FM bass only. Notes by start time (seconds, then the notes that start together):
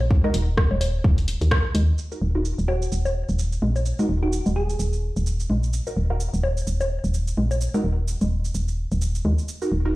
Already playing: A#1
0.34 D#1
0.71 D#1
1.04 D#1
1.41 D#2
1.75 D#2
2.22 D#1
2.58 D#1
2.92 D#1
3.29 D#1
3.62 A#1
4.09 D#1
4.46 D#1
4.79 D#1
5.16 D#1
5.50 A#1
5.97 D#1
6.34 D#1
6.67 D#1
7.04 D#1
7.37 A#1
7.84 D#1
8.21 D#1
8.55 D#1
8.92 D#1
9.25 D#2
9.72 D#1